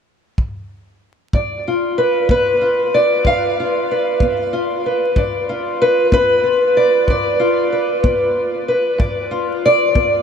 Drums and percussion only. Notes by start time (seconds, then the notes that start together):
0.38 kick
1.33 kick
2.29 kick
3.25 kick
4.20 kick
5.16 kick
6.12 kick
7.08 kick
8.04 kick
9.00 kick
9.95 kick